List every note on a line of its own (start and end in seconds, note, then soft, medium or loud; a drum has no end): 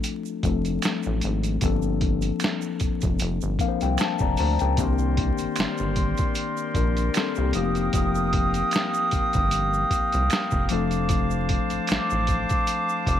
0.00 0.39 F3 medium
0.00 0.40 A3 medium
0.00 0.40 C4 medium
0.00 0.41 D4 medium
0.00 0.41 A4 medium
0.00 closed hi-hat medium
0.00 shaker medium
0.25 shaker soft
0.43 0.78 F1 loud
0.43 1.61 F3 medium
0.43 1.62 A3 medium
0.43 1.62 C4 medium
0.43 1.63 D4 medium
0.43 1.63 A4 medium
0.43 kick medium
0.43 closed hi-hat medium
0.43 shaker medium
0.65 closed hi-hat soft
0.65 shaker soft
0.82 finger snap medium
0.82 snare loud
0.82 closed hi-hat medium
0.82 shaker medium
1.03 1.21 A1 medium
1.03 shaker soft
1.21 1.58 G#1 medium
1.21 closed hi-hat medium
1.21 shaker medium
1.43 closed hi-hat soft
1.43 shaker soft
1.61 2.31 G1 loud
1.61 3.55 F3 medium
1.61 3.56 A#3 medium
1.61 3.56 C4 medium
1.61 3.57 D4 medium
1.61 kick loud
1.61 closed hi-hat medium
1.61 shaker medium
1.65 3.57 A4 medium
1.82 shaker soft
2.01 kick medium
2.01 closed hi-hat medium
2.22 closed hi-hat soft
2.22 shaker soft
2.40 finger snap medium
2.40 closed hi-hat medium
2.40 shaker medium
2.44 snare loud
2.61 shaker soft
2.80 2.90 F1 medium
2.80 kick medium
2.80 closed hi-hat medium
2.80 shaker soft
3.01 3.19 F1 medium
3.01 kick loud
3.01 closed hi-hat soft
3.01 shaker soft
3.19 3.39 F1 loud
3.19 closed hi-hat loud
3.19 shaker medium
3.41 3.58 G1 loud
3.41 shaker soft
3.59 4.78 F3 medium
3.59 4.77 A#3 medium
3.59 4.78 C4 medium
3.59 4.78 D4 medium
3.59 3.68 A#4 medium
3.59 3.80 F5 medium
3.59 kick medium
3.59 closed hi-hat medium
3.59 shaker soft
3.68 4.03 C5 medium
3.81 3.97 C2 medium
3.81 3.98 G5 medium
3.81 closed hi-hat soft
3.81 shaker soft
3.98 4.36 A5 medium
3.98 finger snap medium
3.98 snare loud
3.98 closed hi-hat medium
3.98 shaker medium
4.19 4.36 F1 medium
4.19 4.38 D5 medium
4.19 4.38 A#5 medium
4.19 kick loud
4.19 shaker soft
4.37 4.58 D2 loud
4.37 4.60 C5 medium
4.37 4.59 A5 medium
4.37 4.75 A#5 medium
4.37 open hi-hat soft
4.37 shaker medium
4.59 4.76 C#2 loud
4.59 4.98 A#4 medium
4.59 4.98 G5 medium
4.59 closed hi-hat soft
4.59 shaker soft
4.77 5.31 C2 loud
4.77 7.50 D#3 medium
4.77 6.33 A#3 medium
4.77 6.33 C4 medium
4.77 6.33 D4 medium
4.77 6.34 G4 medium
4.77 10.66 A#4 medium
4.77 7.51 C5 medium
4.77 7.51 D5 medium
4.77 7.51 C6 medium
4.77 kick loud
4.77 closed hi-hat medium
4.77 shaker medium
4.98 shaker soft
5.17 kick medium
5.17 closed hi-hat medium
5.38 5.47 G1 soft
5.38 closed hi-hat soft
5.38 shaker soft
5.56 5.67 G1 soft
5.56 finger snap medium
5.56 closed hi-hat medium
5.56 shaker medium
5.60 snare loud
5.78 6.14 G1 medium
5.78 shaker soft
5.96 kick medium
5.96 closed hi-hat medium
5.96 shaker soft
6.17 kick medium
6.17 closed hi-hat soft
6.17 shaker medium
6.35 closed hi-hat medium
6.35 shaker medium
6.57 shaker soft
6.75 7.10 A#1 medium
6.75 7.14 D4 medium
6.75 7.13 A#4 medium
6.75 kick medium
6.75 closed hi-hat medium
6.75 shaker soft
6.97 closed hi-hat soft
6.97 shaker soft
7.14 7.36 C4 medium
7.14 7.36 A4 medium
7.14 finger snap medium
7.14 snare loud
7.14 closed hi-hat medium
7.14 shaker medium
7.35 7.53 C2 medium
7.35 7.60 A#3 medium
7.35 7.55 G4 medium
7.35 shaker soft
7.53 7.89 F1 loud
7.53 10.66 F3 medium
7.53 7.61 A3 medium
7.53 10.66 C4 medium
7.53 10.67 D#4 medium
7.53 10.67 G4 medium
7.53 13.20 F5 medium
7.53 10.67 G5 medium
7.53 10.67 D#6 medium
7.53 closed hi-hat medium
7.53 shaker medium
7.61 10.69 A#3 medium
7.75 closed hi-hat soft
7.75 shaker soft
7.93 8.63 F1 loud
7.93 kick loud
7.93 closed hi-hat medium
7.93 shaker medium
8.15 shaker soft
8.33 kick medium
8.33 closed hi-hat medium
8.54 closed hi-hat soft
8.54 shaker medium
8.71 finger snap medium
8.71 closed hi-hat medium
8.71 shaker medium
8.76 snare loud
8.94 shaker medium
9.11 9.22 G1 soft
9.11 kick medium
9.11 closed hi-hat medium
9.11 shaker soft
9.33 9.85 G1 medium
9.33 kick loud
9.33 closed hi-hat soft
9.33 shaker medium
9.51 closed hi-hat loud
9.51 shaker medium
9.74 shaker soft
9.91 10.00 C2 medium
9.91 kick medium
9.91 closed hi-hat medium
9.91 shaker medium
10.12 10.29 C2 medium
10.12 closed hi-hat soft
10.12 shaker soft
10.30 finger snap medium
10.30 snare loud
10.30 closed hi-hat medium
10.30 shaker medium
10.51 10.68 F1 loud
10.51 kick medium
10.51 shaker soft
10.69 11.58 F1 loud
10.69 13.20 F3 medium
10.69 13.20 A3 medium
10.69 13.20 C4 medium
10.69 13.20 D4 medium
10.69 13.20 C5 medium
10.69 13.20 A5 medium
10.69 13.20 D6 medium
10.69 closed hi-hat medium
10.69 shaker medium
10.73 13.20 A4 medium
10.91 closed hi-hat soft
10.91 shaker medium
11.09 kick loud
11.09 closed hi-hat medium
11.09 shaker medium
11.31 shaker soft
11.49 kick medium
11.49 closed hi-hat medium
11.70 11.79 A1 soft
11.70 closed hi-hat soft
11.70 shaker soft
11.87 11.99 A1 medium
11.87 finger snap medium
11.87 closed hi-hat medium
11.87 shaker medium
11.92 snare loud
12.10 12.45 A1 medium
12.10 shaker medium
12.27 kick medium
12.27 closed hi-hat medium
12.27 shaker soft
12.49 kick medium
12.49 closed hi-hat soft
12.49 shaker medium
12.67 closed hi-hat medium
12.67 shaker medium
12.89 shaker medium
13.07 13.20 F1 loud
13.07 kick medium
13.07 closed hi-hat medium
13.07 shaker medium